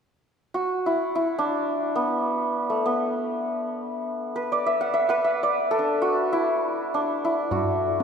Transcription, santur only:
0.54 3.81 F#4 medium
0.86 1.15 E4 medium
1.15 4.63 E4 medium
1.39 5.12 D4 medium
1.96 2.85 B3 medium
2.70 7.13 A3 medium
2.86 7.02 B3 medium
4.36 5.09 B4 medium
4.52 5.43 D5 medium
4.66 4.93 E5 medium
4.81 5.08 F#5 medium
4.94 5.24 E5 medium
5.09 7.84 B4 medium
5.09 7.24 F#5 medium
5.24 7.54 E5 medium
5.43 7.89 D5 medium
5.71 8.04 A4 medium
5.79 6.94 D4 medium
6.02 7.51 F#4 medium
6.33 7.24 E4 medium
6.94 8.04 D4 medium
7.25 8.04 E4 medium
7.52 8.04 F#4 medium

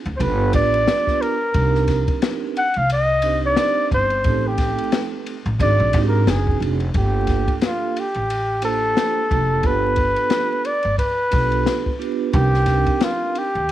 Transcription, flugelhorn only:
0.17 0.23 C5 medium
0.21 0.54 B4 loud
0.55 1.23 D5 loud
1.22 2.23 A#4 loud
2.58 2.79 F#5 loud
2.78 2.91 F5 loud
2.92 3.41 D#5 loud
3.46 3.89 D5 loud
3.94 4.49 C5 loud
4.48 5.14 G4 medium
5.62 6.03 D5 loud
6.08 6.32 A#4 medium
6.30 6.62 G#4 medium
6.98 7.59 G4 medium
7.66 8.01 F4 medium
8.00 8.64 G4 medium
8.65 9.68 A4 loud
9.66 10.67 B4 loud
10.66 10.99 D5 medium
10.99 11.96 B4 loud
12.34 13.05 G4 medium
13.04 13.40 F4 medium
13.38 13.72 G4 medium

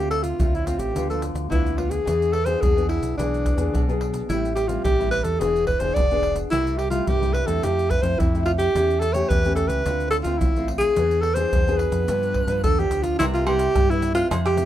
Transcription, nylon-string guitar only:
0.00 0.38 D3 medium
0.00 0.36 A3 medium
0.00 0.36 C4 medium
0.00 0.36 F4 medium
0.40 0.93 A2 soft
0.40 0.63 A3 soft
0.40 0.64 C4 medium
0.40 0.64 F4 soft
0.66 0.93 A3 medium
0.66 0.93 C4 medium
0.66 0.94 F4 medium
0.95 1.48 D3 soft
0.95 1.05 F3 soft
0.95 1.06 B3 soft
0.95 1.06 F4 medium
1.11 1.48 F3 medium
1.11 1.47 B3 soft
1.11 1.48 F4 soft
1.50 2.03 D3 medium
1.50 1.67 F3 soft
1.50 1.67 B3 soft
1.50 1.68 F4 medium
1.76 1.96 F3 soft
1.76 1.96 B3 soft
1.76 1.96 F4 soft
2.05 2.59 E3 medium
2.05 2.32 B3 medium
2.05 2.33 D4 soft
2.05 2.33 G#4 medium
2.46 2.71 B3 medium
2.46 2.71 D4 medium
2.46 2.71 G#4 medium
2.61 3.15 B2 medium
2.76 3.14 B3 medium
2.76 3.14 D4 medium
2.76 3.14 G#4 medium
3.18 3.71 E3 soft
3.18 3.56 B3 medium
3.18 3.56 D4 soft
3.18 3.56 G#4 soft
3.57 3.82 B3 medium
3.57 3.82 D4 medium
3.57 3.82 G#4 medium
3.74 4.27 B2 medium
3.88 4.25 B3 medium
3.88 4.26 D4 medium
3.88 4.26 G#4 soft
4.29 4.82 A2 medium
4.29 4.67 G3 medium
4.29 4.67 C4 medium
4.29 4.67 E4 medium
4.68 4.93 G3 medium
4.68 4.93 C4 medium
4.68 4.94 E4 medium
4.84 5.38 E3 soft
4.99 5.37 G3 medium
4.99 5.37 C4 soft
4.99 5.37 E4 medium
5.40 5.93 E3 soft
5.40 5.66 B3 soft
5.40 5.67 D4 medium
5.40 5.67 G#4 medium
5.80 6.04 B3 medium
5.80 6.05 D4 soft
5.80 6.05 G#4 medium
5.96 6.49 B2 medium
6.11 6.48 B3 medium
6.11 6.48 D4 medium
6.11 6.48 G#4 medium
6.51 7.05 C3 medium
6.51 6.78 G3 medium
6.51 6.78 A3 medium
6.51 6.78 E4 medium
6.91 7.16 G3 medium
6.91 7.16 A3 medium
6.91 7.16 E4 medium
7.07 7.60 G2 medium
7.21 7.45 G3 medium
7.21 7.45 A3 medium
7.21 7.46 E4 medium
7.46 7.99 A3 medium
7.46 8.00 C4 medium
7.46 8.00 E4 medium
7.63 8.16 F3 soft
8.02 8.27 A3 medium
8.02 8.27 C4 medium
8.02 8.27 E4 medium
8.20 8.72 C3 medium
8.35 8.71 A3 medium
8.35 8.71 C4 medium
8.35 8.71 E4 medium
8.75 9.28 E3 medium
8.75 9.01 A3 medium
8.75 9.01 C#4 medium
8.75 9.01 G4 medium
9.15 9.39 A3 medium
9.15 9.39 C#4 medium
9.15 9.39 G4 medium
9.30 9.83 E3 medium
9.45 9.82 A3 medium
9.45 9.82 C#4 medium
9.45 9.82 G4 medium
9.85 10.39 D3 soft
9.85 10.23 A3 soft
9.85 10.23 C4 soft
9.85 10.23 F4 medium
10.25 10.50 A3 medium
10.25 10.50 C4 medium
10.25 10.50 F4 medium
10.41 10.94 A2 medium
10.57 10.94 A3 medium
10.57 10.94 C4 medium
10.57 10.94 F4 medium
10.97 11.50 E3 medium
10.97 11.24 B3 medium
10.97 11.24 D4 medium
10.97 11.24 G#4 medium
11.36 11.61 B3 medium
11.36 11.61 D4 medium
11.36 11.61 G#4 medium
11.54 12.06 B2 medium
11.68 12.04 B3 medium
11.68 12.05 D4 medium
11.68 12.05 G#4 medium
12.08 12.61 G2 soft
12.08 12.46 F3 medium
12.08 12.46 B3 medium
12.08 12.46 D4 medium
12.47 12.72 F3 soft
12.47 12.72 B3 medium
12.47 12.72 D4 medium
12.63 13.17 D3 medium
12.79 13.16 F3 medium
12.79 13.16 B3 medium
12.79 13.16 D4 medium
13.20 13.73 C3 medium
13.20 13.36 G3 medium
13.20 13.36 B3 medium
13.20 13.37 E4 medium
13.46 13.84 G3 medium
13.46 13.84 B3 medium
13.46 13.84 E4 medium
13.76 14.28 G2 medium
13.90 14.13 G3 medium
13.90 14.13 B3 medium
13.90 14.13 E4 medium
14.14 14.53 A3 medium
14.14 14.53 C4 medium
14.14 14.53 E4 medium
14.30 14.65 F3 medium
14.56 14.65 A3 medium
14.56 14.65 C4 medium
14.56 14.65 E4 medium

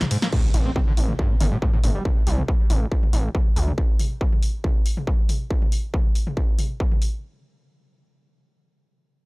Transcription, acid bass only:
0.01 0.04 A#1 medium
0.11 0.17 G#2 loud
0.22 0.28 A#3 medium
0.33 0.42 A2 medium
0.66 0.71 C4 medium
0.76 0.80 C4 loud
0.87 0.93 D3 medium
1.19 1.32 G2 loud
1.30 1.36 C3 loud
1.41 1.47 D#3 loud
1.52 1.57 A2 loud
1.62 1.72 A2 loud
1.74 1.79 A2 loud
1.84 1.90 A2 loud
1.95 2.03 G3 medium

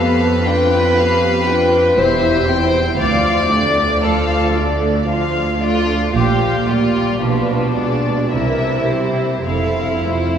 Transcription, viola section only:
0.00 0.43 B3 medium
0.00 0.44 G4 medium
0.47 0.97 D4 soft
0.47 0.97 F4 soft
0.99 1.49 B3 soft
0.99 1.48 G4 soft
1.49 1.99 D4 soft
1.49 1.99 F4 soft
2.00 2.47 E4 soft
2.00 2.47 G4 soft
2.49 3.00 C4 soft
2.49 3.00 E4 soft
2.99 3.48 F3 soft
2.99 3.48 F4 medium
3.51 4.05 A3 soft
3.51 4.05 D4 soft
4.04 4.58 F3 soft
4.04 4.57 F4 soft
4.57 5.09 A3 medium
4.57 5.10 D4 soft
5.09 5.58 F3 soft
5.09 5.59 F4 soft
5.63 6.16 A3 soft
5.63 6.16 D4 soft
6.15 6.65 F3 soft
6.15 6.65 F4 soft
6.70 7.24 G3 soft
6.70 7.24 G4 soft
7.24 7.74 F3 soft
7.24 7.74 F4 soft
7.78 8.33 G#3 soft
7.78 8.34 D4 soft
8.34 8.86 E3 soft
8.34 8.86 A#4 soft
8.89 9.48 G3 soft
8.89 9.48 G4 soft
9.46 10.03 C4 soft
9.46 10.02 A4 soft
10.06 10.38 A3 soft
10.06 10.38 F4 soft

